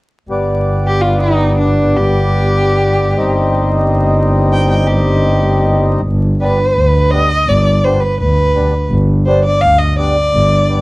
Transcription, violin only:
0.87 1.03 G4 medium
1.01 1.20 F4 medium
1.20 1.54 D#4 medium
1.58 1.98 D4 medium
1.96 3.62 G4 medium
4.53 4.69 G5 medium
4.70 4.89 G5 medium
4.87 5.80 G4 medium
6.42 7.12 B4 medium
7.11 7.50 D#5 loud
7.49 7.85 D5 medium
7.84 8.02 C5 medium
8.00 8.19 B4 medium
8.19 8.87 B4 medium
9.26 9.43 C5 medium
9.45 9.63 D5 medium
9.61 9.80 F5 loud
9.78 9.97 D#5 medium
9.98 10.81 D5 loud

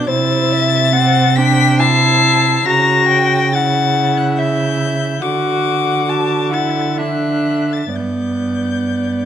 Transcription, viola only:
0.10 0.92 E4 medium
0.96 1.39 C4 medium
1.38 1.81 D4 medium
1.80 2.67 E4 medium
2.66 3.54 F#4 medium
3.53 5.23 E4 medium
5.21 6.06 F#4 medium
6.07 6.53 F#4 medium
6.51 7.00 E4 medium
6.99 7.94 D4 medium
7.95 9.25 B3 medium

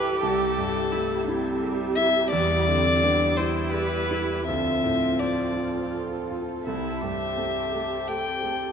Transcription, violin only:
0.00 0.20 B4 loud
0.21 1.59 A4 loud
1.95 2.28 E5 loud
2.31 3.38 D5 loud
3.37 3.74 C5 medium
3.72 4.47 B4 loud
4.47 5.21 E5 loud
5.20 5.93 D5 medium
6.66 8.09 E5 medium
8.08 8.72 G5 medium

